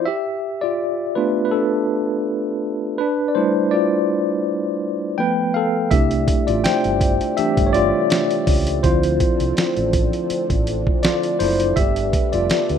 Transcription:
0.05 tine electric piano G4 E5
0.61 tine electric piano F4 D5
1.15 tine electric piano A3 B3 D4 F4 B4
1.45 tine electric piano B4
1.51 tine electric piano D4 A4
2.98 tine electric piano D4 B4
3.28 tine electric piano D5
3.35 tine electric piano G3 A3 D4 E4 C5
3.71 tine electric piano F4 D5
5.18 tine electric piano F3 A3 B3 B4 G5
5.54 tine electric piano A4 F5
5.91 fingered electric bass C2, analog synth pad C3 G3 A3 D4, tine electric piano A3 D4 E4 G4 E5, kick, closed hi-hat
6.11 closed hi-hat
6.28 kick, closed hi-hat
6.47 fingered electric bass A1, tine electric piano F4 D5, closed hi-hat
6.64 tine electric piano C5 G5, muted fingered electric bass stroke, snare, closed hi-hat
6.84 fingered electric bass G1, closed hi-hat
7.01 kick, closed hi-hat
7.21 closed hi-hat
7.37 tine electric piano E3 A3 D4 G4 E5, muted fingered electric bass stroke, closed hi-hat
7.57 fingered electric bass G1, kick, closed hi-hat
7.67 tine electric piano C#5
7.73 tine electric piano F4 D5, closed hi-hat
8.10 snare, closed hi-hat
8.31 closed hi-hat
8.47 fingered electric bass C#2, kick, open hi-hat
8.67 closed hi-hat
8.83 fingered electric bass D2, analog synth pad D3 F3 C4 D4, tine electric piano F3 C4 E4 F4 C5, kick, closed hi-hat
9.03 closed hi-hat
9.20 kick, closed hi-hat
9.40 fingered electric bass C2, closed hi-hat
9.57 snare, closed hi-hat
9.77 fingered electric bass A1, closed hi-hat
9.93 kick, closed hi-hat
10.13 closed hi-hat
10.30 muted fingered electric bass stroke, closed hi-hat
10.50 fingered electric bass A1, kick, closed hi-hat
10.67 closed hi-hat
10.87 kick
11.03 tine electric piano F4 D5, snare, closed hi-hat
11.23 closed hi-hat
11.39 fingered electric bass F#1, tine electric piano E4 C5, open hi-hat
11.60 closed hi-hat
11.76 fingered electric bass G1, analog synth pad G3 B3, tine electric piano G4 E5, kick, closed hi-hat
11.96 closed hi-hat
12.13 kick, closed hi-hat
12.32 fingered electric bass F1, tine electric piano F4 D5, closed hi-hat
12.50 muted fingered electric bass stroke, snare, closed hi-hat
12.69 fingered electric bass D2, closed hi-hat

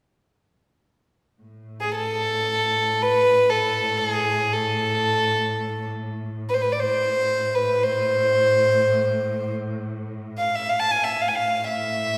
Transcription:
1.42 cello section A2
1.81 violin G#4
1.95 violin A4
3.02 violin B4
3.50 violin A4
3.97 violin A4
4.08 violin G#4
4.53 violin A4
6.38 cello section A2
6.49 violin B4
6.54 violin C5
6.62 violin B4
6.72 violin D5
6.80 violin C5
7.54 violin B4
7.83 violin C5
10.38 violin F5
10.56 violin E5
10.69 violin F5
10.80 violin A5
10.91 violin G#5
11.04 violin E5
11.21 violin F5
11.28 violin G#5
11.35 cello section A2, violin F5
11.69 violin E5

